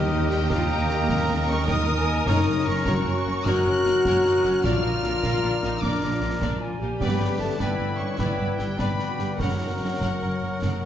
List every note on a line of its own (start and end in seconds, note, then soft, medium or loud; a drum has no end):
0.00 2.22 D#2 medium
0.00 2.23 D#2 medium
0.00 0.31 D#3 medium
0.00 1.07 D#3 medium
0.00 0.30 G4 soft
0.00 0.49 G4 medium
0.00 2.22 G4 medium
0.00 0.46 A#4 medium
0.00 0.30 D#5 medium
0.00 0.46 D#5 medium
0.00 2.22 D#5 medium
0.00 0.47 G5 medium
0.12 1.27 A#3 medium
0.29 0.39 G3 medium
0.29 1.47 G4 medium
0.29 0.49 G5 medium
0.29 snare soft
0.49 1.46 A#3 medium
0.49 0.70 F4 medium
0.49 0.88 A#4 medium
0.49 1.65 A#4 medium
0.49 1.65 D#5 medium
0.49 1.65 G5 medium
0.49 1.47 A#5 medium
0.49 concert bass drum medium
0.49 snare medium
0.70 0.89 D#4 medium
0.70 1.85 D#5 medium
0.89 1.09 G4 medium
0.89 1.66 A#4 soft
0.89 snare soft
1.08 2.27 D#3 medium
1.08 2.85 A#4 medium
1.08 concert bass drum medium
1.08 snare medium
1.28 4.65 A#3 soft
1.47 1.67 C#4 medium
1.47 2.28 G4 medium
1.47 1.67 C#6 medium
1.68 2.27 D#4 medium
1.68 2.06 A#4 medium
1.68 2.26 A#4 medium
1.68 2.29 D#5 medium
1.68 1.75 G5 medium
1.68 2.25 D#6 medium
1.68 concert bass drum medium
1.68 snare medium
1.87 2.27 D#5 soft
1.97 2.29 G#5 medium
2.07 2.84 A#4 medium
2.26 2.34 F#1 medium
2.26 3.45 F#2 medium
2.26 2.34 F#2 medium
2.26 2.82 F#2 medium
2.26 2.66 D#4 loud
2.26 2.44 A#4 medium
2.26 3.44 A#4 medium
2.26 2.44 C#5 medium
2.26 3.46 C#5 medium
2.26 3.46 A#5 medium
2.26 2.65 D#6 medium
2.26 concert bass drum medium
2.26 snare medium
2.26 crash soft
2.45 2.54 F#1 medium
2.45 2.54 F#2 medium
2.45 3.65 C#3 soft
2.45 2.53 A#4 medium
2.45 2.54 C#5 soft
2.65 2.74 F#1 medium
2.65 2.74 F#2 medium
2.65 3.46 C#4 medium
2.65 2.73 F#4 soft
2.65 3.84 F#4 medium
2.65 2.73 A#4 medium
2.65 3.45 C#6 medium
2.85 2.94 F#1 medium
2.85 2.94 F#2 medium
2.85 3.45 F#4 medium
2.85 3.04 A#4 medium
2.85 3.25 A#4 medium
2.85 3.04 C#5 medium
2.85 concert bass drum medium
2.85 snare medium
3.05 3.13 F#1 soft
3.05 3.14 F#2 medium
3.05 3.15 A#4 medium
3.05 4.24 C#5 medium
3.05 3.15 C#5 medium
3.26 3.34 F#1 medium
3.26 3.34 F#2 soft
3.26 3.35 F#4 medium
3.26 4.04 A#4 medium
3.26 3.35 A#4 medium
3.46 3.54 F#1 medium
3.46 4.65 F#2 medium
3.46 3.54 F#2 medium
3.46 3.66 D#4 medium
3.46 4.64 F#4 loud
3.46 4.62 A#4 medium
3.46 3.65 A#4 medium
3.46 4.67 C#5 medium
3.46 3.65 C#5 medium
3.46 4.61 A#5 medium
3.46 4.64 F#6 medium
3.46 concert bass drum medium
3.46 snare medium
3.66 3.73 F#1 medium
3.66 3.74 F#2 medium
3.66 4.65 C#3 soft
3.66 3.85 C#4 medium
3.66 3.75 A#4 soft
3.66 3.75 C#5 medium
3.85 3.93 F#1 medium
3.85 3.94 F#2 soft
3.85 4.05 D#4 medium
3.85 4.65 F#4 medium
3.85 3.93 F#4 medium
3.85 3.94 A#4 medium
3.85 snare soft
4.05 4.13 F#1 medium
4.05 4.13 F#2 medium
4.05 4.24 C#4 medium
4.05 4.44 A#4 medium
4.05 4.24 A#4 medium
4.05 4.24 C#5 medium
4.05 concert bass drum medium
4.05 snare medium
4.24 4.43 D#4 medium
4.24 4.66 C#5 medium
4.24 snare soft
4.44 4.53 F#1 medium
4.44 4.53 F#2 soft
4.44 4.64 C#4 medium
4.44 4.53 F#4 medium
4.44 5.21 A#4 medium
4.44 4.53 A#4 medium
4.44 snare soft
4.64 4.72 A#1 medium
4.64 5.81 A#2 medium
4.64 4.72 A#2 medium
4.64 4.84 D4 medium
4.64 5.82 F4 loud
4.64 4.82 A#4 medium
4.64 5.80 A#4 medium
4.64 4.82 D5 medium
4.64 5.81 D5 medium
4.64 5.80 A#5 medium
4.64 5.80 F6 loud
4.64 concert bass drum medium
4.64 snare medium
4.84 4.92 A#1 soft
4.84 4.92 A#2 soft
4.84 6.01 F3 soft
4.84 5.03 D#4 medium
4.84 4.93 A#4 soft
4.84 4.93 D5 soft
5.03 5.11 A#1 medium
5.03 5.12 A#2 soft
5.03 5.23 D4 medium
5.03 5.13 F4 soft
5.03 5.12 A#4 soft
5.03 snare soft
5.23 5.31 A#1 medium
5.23 5.32 A#2 medium
5.23 5.43 F4 medium
5.23 5.61 A#4 medium
5.23 5.42 A#4 medium
5.23 5.42 D5 medium
5.23 concert bass drum medium
5.23 snare medium
5.43 5.51 A#1 soft
5.43 5.51 A#2 medium
5.43 5.62 D4 medium
5.43 5.52 A#4 medium
5.43 6.59 D5 medium
5.43 5.52 D5 soft
5.62 5.70 A#1 medium
5.62 5.70 A#2 medium
5.62 5.81 D#4 medium
5.62 5.72 F4 medium
5.62 6.40 A#4 medium
5.62 5.72 A#4 soft
5.62 snare medium
5.82 5.90 A#1 medium
5.82 7.02 A#2 soft
5.82 5.90 A#2 medium
5.82 6.20 D4 medium
5.82 6.40 F4 medium
5.82 6.71 A#4 medium
5.82 6.01 A#4 medium
5.82 6.70 D5 medium
5.82 6.01 D5 medium
5.82 6.63 A#5 medium
5.82 6.21 D6 medium
5.82 concert bass drum medium
5.82 snare medium
6.01 6.09 A#1 soft
6.01 6.10 A#2 medium
6.01 7.02 F3 soft
6.01 6.11 A#4 medium
6.01 6.11 D5 soft
6.21 6.29 A#1 medium
6.21 6.30 A#2 soft
6.21 7.39 D4 soft
6.21 6.31 F4 medium
6.21 6.30 A#4 medium
6.41 6.49 A#1 medium
6.41 6.50 A#2 medium
6.41 6.61 D4 medium
6.41 6.59 A#4 medium
6.41 6.80 A#4 medium
6.41 6.59 D5 medium
6.41 concert bass drum medium
6.41 snare medium
6.60 6.80 F4 medium
6.60 9.41 D5 soft
6.60 7.03 G#5 medium
6.81 6.89 A#1 soft
6.81 6.90 A#2 soft
6.81 6.89 F4 soft
6.81 7.58 G4 medium
6.81 7.02 A#4 soft
6.81 6.90 A#4 medium
7.00 7.08 G1 medium
7.00 8.18 G2 medium
7.00 7.09 G2 medium
7.00 7.37 B3 medium
7.00 7.19 B4 medium
7.00 7.56 B4 medium
7.00 7.55 D5 soft
7.00 7.19 D5 medium
7.00 7.39 G5 soft
7.00 7.37 B5 medium
7.00 concert bass drum medium
7.00 snare medium
7.20 7.28 G1 soft
7.20 7.29 G2 soft
7.20 8.39 D3 soft
7.20 7.28 B4 soft
7.20 7.28 D5 soft
7.39 7.48 G1 soft
7.39 7.49 G2 soft
7.39 7.58 A3 medium
7.39 7.78 D4 soft
7.39 7.47 G4 soft
7.39 7.47 B4 soft
7.39 7.59 A5 medium
7.59 7.67 G1 medium
7.59 7.68 G2 medium
7.59 7.98 B3 medium
7.59 8.77 E4 medium
7.59 7.78 B4 medium
7.59 7.98 B4 soft
7.59 8.18 B4 medium
7.59 7.78 D5 medium
7.59 8.18 D5 soft
7.59 8.15 G5 medium
7.59 7.99 B5 medium
7.59 concert bass drum medium
7.59 snare medium
7.79 7.87 G1 soft
7.79 7.87 G2 soft
7.79 8.58 D4 soft
7.79 7.87 B4 soft
7.79 7.87 D5 soft
7.98 8.06 G1 soft
7.98 8.07 G2 soft
7.98 8.18 C#4 medium
7.98 8.08 G4 soft
7.98 8.78 B4 soft
7.98 8.08 B4 soft
7.98 8.18 C#6 medium
8.18 8.27 G1 medium
8.18 9.41 G2 soft
8.18 8.27 G2 medium
8.18 8.58 B3 medium
8.18 8.78 B4 soft
8.18 8.38 B4 medium
8.18 8.77 D5 soft
8.18 8.38 D5 medium
8.18 8.77 G5 soft
8.18 8.58 B5 medium
8.18 concert bass drum medium
8.18 snare medium
8.39 8.47 G1 soft
8.39 8.48 G2 soft
8.39 9.42 D3 soft
8.39 8.48 B4 soft
8.39 8.48 D5 soft
8.58 8.67 G1 soft
8.58 8.68 G2 soft
8.58 8.78 G3 medium
8.58 8.98 D4 soft
8.58 8.67 G4 soft
8.58 8.67 B4 soft
8.58 8.78 G5 medium
8.58 snare soft
8.78 8.87 G1 medium
8.78 8.87 G2 soft
8.78 9.38 B3 medium
8.78 8.98 D4 medium
8.78 8.98 B4 soft
8.78 9.42 B4 soft
8.78 9.41 D5 soft
8.78 8.98 D5 medium
8.78 9.42 G5 soft
8.78 9.40 B5 medium
8.78 concert bass drum medium
8.78 snare medium
8.99 9.41 D4 soft
8.99 9.19 F#4 medium
8.99 snare soft
9.19 9.27 G1 soft
9.19 9.28 G2 soft
9.19 9.39 G4 soft
9.19 9.28 G4 soft
9.19 9.28 B4 soft
9.19 9.42 B4 soft
9.19 snare soft
9.39 9.47 F#1 medium
9.39 9.97 F#2 medium
9.39 9.48 F#2 soft
9.39 10.61 F#2 soft
9.39 10.85 F#3 medium
9.39 10.85 A#4 medium
9.39 10.85 A#4 soft
9.39 9.60 A#4 medium
9.39 10.85 C#5 soft
9.39 10.85 F#5 medium
9.39 10.85 F#5 soft
9.39 9.60 F#5 medium
9.39 concert bass drum medium
9.39 snare medium
9.60 9.68 F#1 soft
9.60 9.69 F#2 soft
9.60 10.82 C#3 soft
9.60 9.69 A#4 soft
9.60 9.69 F#5 soft
9.81 9.89 F#1 soft
9.81 9.90 F#2 soft
9.81 10.85 F#4 soft
9.81 9.89 F#4 soft
9.81 9.89 C#5 soft
10.01 10.10 F#1 soft
10.01 10.10 F#2 soft
10.01 10.40 A#4 soft
10.01 10.20 A#4 soft
10.01 10.20 F#5 soft
10.01 concert bass drum medium
10.01 snare soft
10.21 10.29 F#1 soft
10.21 10.30 F#2 soft
10.21 10.30 A#4 soft
10.21 10.85 C#5 soft
10.21 10.30 F#5 soft
10.41 10.50 F#1 soft
10.41 10.51 F#2 soft
10.41 10.51 F#4 soft
10.41 10.85 A#4 soft
10.41 10.51 C#5 soft
10.62 10.71 F#1 medium
10.62 10.85 F#2 soft
10.62 10.71 F#2 medium
10.62 10.81 A#4 soft
10.62 10.81 F#5 soft
10.62 concert bass drum medium
10.62 snare medium